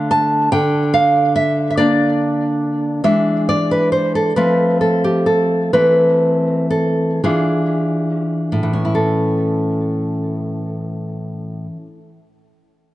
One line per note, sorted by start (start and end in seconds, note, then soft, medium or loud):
0.00 0.48 D3 medium
0.00 0.48 A3 soft
0.00 0.48 D4 soft
0.11 0.50 A5 medium
0.52 3.00 D3 medium
0.52 0.92 G5 medium
0.94 1.34 F5 medium
1.36 1.69 E5 medium
1.70 1.77 E5 medium
1.77 3.00 A#3 soft
1.77 3.01 D4 medium
1.77 3.00 D5 medium
3.04 4.32 E3 medium
3.04 4.32 G#3 soft
3.04 4.32 D4 soft
3.04 3.46 E5 medium
3.49 3.70 D5 medium
3.71 3.92 B4 medium
3.92 4.14 C5 medium
4.15 4.36 A4 medium
4.36 5.70 F3 medium
4.36 5.70 A3 soft
4.36 5.70 C4 soft
4.36 4.79 B4 medium
4.81 5.03 A4 medium
5.04 5.27 G4 medium
5.26 5.71 A4 medium
5.73 7.19 E3 medium
5.73 7.19 A3 soft
5.73 7.19 C4 soft
5.73 6.67 B4 medium
6.71 7.21 A4 medium
7.24 8.62 E3 medium
7.24 8.73 D4 soft
7.24 8.91 F4 soft
7.24 8.91 G#4 medium
8.52 11.65 A2 medium
8.63 11.76 E3 soft
8.73 11.87 C#4 soft
8.85 11.98 E4 soft
8.95 12.08 A4 soft